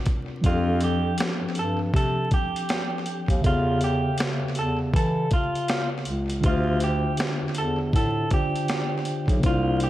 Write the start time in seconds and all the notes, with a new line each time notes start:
Already playing: C3 C4 D4 F4 A#4
0.06 kick, closed hi-hat
0.42 F2 F3 C4 D4, kick, closed hi-hat
0.46 F4 G4 A4
0.81 G4, closed hi-hat
1.18 snare, closed hi-hat
1.41 G2
1.55 G2, closed hi-hat
1.59 A4
1.94 C3 A4, kick, closed hi-hat
2.31 G4, kick, closed hi-hat
2.56 closed hi-hat
2.69 snare, closed hi-hat
3.06 closed hi-hat
3.28 D#2, kick, closed hi-hat
3.41 E2 C#3 G4 A4 E5, kick, closed hi-hat
3.45 F4 C#5 F5
3.81 G4, closed hi-hat
4.18 snare, closed hi-hat
4.41 E2
4.55 E2 A4, closed hi-hat
4.94 E3 A4, kick, closed hi-hat
5.31 F4, kick, closed hi-hat
5.55 closed hi-hat
5.68 snare, closed hi-hat
6.05 C#2, closed hi-hat
6.30 closed hi-hat
6.41 D2 D3 D4 E4 G4, kick, closed hi-hat
6.45 F4 C5 E5
6.49 F4
6.80 G4, closed hi-hat
7.17 snare, closed hi-hat
7.41 E2
7.55 E2 A4, closed hi-hat
7.93 A2 A4, kick, closed hi-hat
8.30 D3 D4 F4 G4 C5 D5, kick, closed hi-hat
8.56 closed hi-hat
8.68 snare, closed hi-hat
9.05 closed hi-hat
9.28 B1, kick, closed hi-hat
9.38 C3 A#3 D4
9.43 C2 E4 F4 C5, kick, closed hi-hat
9.49 F4
9.80 G4, closed hi-hat